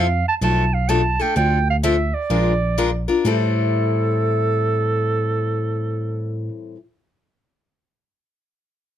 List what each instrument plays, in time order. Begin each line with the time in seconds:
Already playing: tine electric piano F2, clarinet F5
0.28 clarinet A5
0.41 tine electric piano B1, steel-string acoustic guitar B2 F3 A3 D4 A4, clarinet A5
0.74 clarinet F5
0.89 steel-string acoustic guitar B2 F3 A3 D4 A4, clarinet A5
1.20 steel-string acoustic guitar A3 D4 A4, clarinet G5
1.36 tine electric piano D2, steel-string acoustic guitar D3 F3 C4 D4 A4, clarinet G5
1.70 clarinet F5
1.83 steel-string acoustic guitar D3 F3 C4 D4 A4, clarinet E5
2.14 clarinet D5
2.30 tine electric piano A#1, steel-string acoustic guitar F3 G#3 D4 F4 A#4
2.78 steel-string acoustic guitar F3 G#3 D4 F4 A#4
3.08 steel-string acoustic guitar D4 F4 A#4
3.25 tine electric piano A2, steel-string acoustic guitar A2 E3 G3 C4 E4 A4, clarinet A4